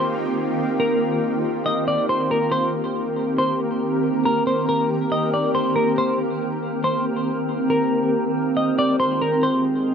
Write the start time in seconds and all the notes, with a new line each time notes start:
Already playing: D#3 A#3 C4 F4 G4 C5
0.80 A#4
1.44 D#3 A#3 C4 G4 A#4
1.66 D#5
1.88 D5
2.09 C5
2.31 A#4
2.52 C5
3.38 C5
4.25 A#4
4.47 C5
4.69 A#4
5.12 D#5
5.34 D5
5.55 C5
5.76 A#4
5.98 C5
6.84 C5
7.70 A#4
8.35 D#3 G#3 F4 G#4
8.57 D#5
8.79 D5
9.00 C5
9.22 A#4
9.43 C5